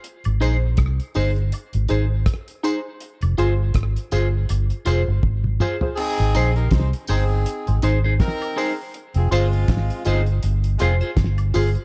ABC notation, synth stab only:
X:1
M:4/4
L:1/16
Q:"Swing 16ths" 1/4=81
K:Ab
V:1 name="Synth stab"
z2 [EAc] z3 [EAc] z3 [EAc] z3 [EAc] z | z2 [FAc] z3 [FAc] z3 [FAc] z3 [FAc] [FAc] | z2 [EAc] z3 [EAc] z2 [Ac] [EAc] z3 [EAc] z | z2 [FAc] z3 [FAc] z3 [FAc] z3 [FAc] z |]